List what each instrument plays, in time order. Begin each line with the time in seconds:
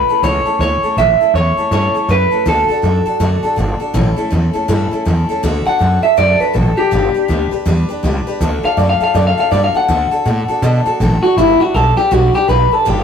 Already playing: clean electric guitar B4
0.08 steel-string acoustic guitar A3 C#4 E4 A4, muted upright bass stroke
0.22 upright bass C#2, steel-string acoustic guitar A2 E3 A3 C#4 E4 A4, clean electric guitar C#5
0.45 steel-string acoustic guitar A3 C#4 E4 A4, muted upright bass stroke
0.59 upright bass D2, steel-string acoustic guitar A3 C#4 E4 A4, clean electric guitar C#5
0.82 steel-string acoustic guitar A3 C#4 E4 A4, muted upright bass stroke
0.97 upright bass A1, steel-string acoustic guitar A2 E3 A3 C#4 E4 A4, clean electric guitar E5
1.20 steel-string acoustic guitar A3 C#4 E4 A4, muted upright bass stroke
1.34 upright bass E2, steel-string acoustic guitar A3 C#4 E4 A4, clean electric guitar C#5
1.57 steel-string acoustic guitar A3 C#4 E4 A4, muted upright bass stroke
1.71 upright bass G2, steel-string acoustic guitar A2 E3 A3 C#4 E4 A4, clean electric guitar C#5
1.94 steel-string acoustic guitar A3 C#4 E4 A4, muted upright bass stroke
2.08 upright bass F#2, steel-string acoustic guitar A3 C#4 E4 A4, clean electric guitar B4
2.31 steel-string acoustic guitar A3 C#4 E4 A4, muted upright bass stroke
2.46 upright bass D2, steel-string acoustic guitar D3 A3 D4 F#4 A4, clean electric guitar A4
2.68 steel-string acoustic guitar D4 F#4 A4, muted upright bass stroke
2.82 upright bass F#2, steel-string acoustic guitar A3 D4 F#4 A4
3.06 steel-string acoustic guitar D4 F#4 A4, muted upright bass stroke
3.20 upright bass F#2, steel-string acoustic guitar D3 A3 D4 F#4 A4
3.43 steel-string acoustic guitar D4 F#4 A4, muted upright bass stroke
3.56 upright bass G1, steel-string acoustic guitar A3 D4 F#4 A4
3.80 steel-string acoustic guitar D4 F#4 A4, muted upright bass stroke
3.94 upright bass A1, steel-string acoustic guitar A2 E3 A3 C#4 E4 A4
4.16 steel-string acoustic guitar A3 C#4 E4 A4, muted upright bass stroke
4.30 upright bass E2, steel-string acoustic guitar A3 C#4 E4 A4
4.53 steel-string acoustic guitar A3 C#4 E4 A4, muted upright bass stroke
4.68 upright bass G2, steel-string acoustic guitar A2 E3 A3 C#4 E4 A4
4.91 steel-string acoustic guitar A3 C#4 E4 A4, muted upright bass stroke
5.05 upright bass E2, steel-string acoustic guitar A3 C#4 E4 A4
5.29 steel-string acoustic guitar A3 C#4 E4 A4, muted upright bass stroke
5.43 upright bass D2, steel-string acoustic guitar D3 A3 D4 F#4 A4
5.66 steel-string acoustic guitar D4 F#4 A4, clean electric guitar F#5, muted upright bass stroke
5.79 upright bass F#2, steel-string acoustic guitar A3 D4 F#4 A4
6.03 steel-string acoustic guitar D4 F#4 A4, clean electric guitar E5, muted upright bass stroke
6.17 upright bass F#2, steel-string acoustic guitar D3 A3 D4 F#4 A4, clean electric guitar D5
6.40 steel-string acoustic guitar D4 F#4 A4, clean electric guitar B4, muted upright bass stroke
6.53 upright bass A1, steel-string acoustic guitar A3 D4 F#4 A4, clean electric guitar A4
6.77 steel-string acoustic guitar D4 F#4 A4, clean electric guitar G4, muted upright bass stroke
6.91 upright bass G1, steel-string acoustic guitar G3 D4 G4 B4
7.14 steel-string acoustic guitar D4 G4 B4, muted upright bass stroke
7.28 upright bass D2, steel-string acoustic guitar G3 D4 G4 B4
7.51 steel-string acoustic guitar D4 G4 B4, muted upright bass stroke
7.65 upright bass E2, steel-string acoustic guitar G3 D4 G4 B4
7.89 steel-string acoustic guitar D4 G4 B4, muted upright bass stroke
8.03 upright bass C#2, steel-string acoustic guitar G3 D4 G4 B4
8.26 steel-string acoustic guitar D4 G4 B4, muted upright bass stroke
8.40 upright bass D2, steel-string acoustic guitar D3 A3 D4 F#4 A4
8.63 steel-string acoustic guitar D4 F#4 A4, clean electric guitar F5, muted upright bass stroke
8.77 upright bass F#2, steel-string acoustic guitar A3 D4 F#4 A4, clean electric guitar D5
8.89 clean electric guitar F5
9.00 steel-string acoustic guitar D4 F#4 A4, clean electric guitar F5, muted upright bass stroke
9.14 upright bass F#2, steel-string acoustic guitar D3 A3 D4 F#4 A4, clean electric guitar D5
9.27 clean electric guitar F5
9.37 steel-string acoustic guitar D4 F#4 A4, clean electric guitar F5, muted upright bass stroke
9.51 upright bass G2, steel-string acoustic guitar A3 D4 F#4 A4, clean electric guitar D5
9.64 clean electric guitar F5
9.74 steel-string acoustic guitar D4 F#4 A4, clean electric guitar F#5, muted upright bass stroke
9.88 upright bass D2, steel-string acoustic guitar D3 A3 D4 F#4 A4
10.11 steel-string acoustic guitar D4 F#4 A4, muted upright bass stroke
10.26 upright bass A2, steel-string acoustic guitar A3 D4 F#4 A4
10.48 steel-string acoustic guitar D4 F#4 A4, muted upright bass stroke
10.62 upright bass B2, steel-string acoustic guitar D3 A3 D4 F#4 A4
10.86 steel-string acoustic guitar D4 F#4 A4, muted upright bass stroke
11.00 upright bass A1, steel-string acoustic guitar A3 D4 F#4 A4
11.23 steel-string acoustic guitar D4 F#4 A4, clean electric guitar F#4, muted upright bass stroke
11.37 upright bass G1, steel-string acoustic guitar G3 D4 G4 B4, clean electric guitar E4
11.60 steel-string acoustic guitar D4 G4 B4, clean electric guitar F#4, muted upright bass stroke
11.74 upright bass B1, steel-string acoustic guitar G3 D4 G4 B4, clean electric guitar A4
11.97 steel-string acoustic guitar D4 G4 B4, clean electric guitar G4, muted upright bass stroke
12.11 upright bass B1, steel-string acoustic guitar G3 D4 G4 B4, clean electric guitar F#4
12.34 steel-string acoustic guitar D4 G4 B4, clean electric guitar G4, muted upright bass stroke
12.48 upright bass B1, steel-string acoustic guitar G3 D4 G4 B4, clean electric guitar B4
12.72 steel-string acoustic guitar D4 G4 B4, clean electric guitar A4, muted upright bass stroke
12.85 upright bass G1, steel-string acoustic guitar G3 D4 G4 B4, clean electric guitar G4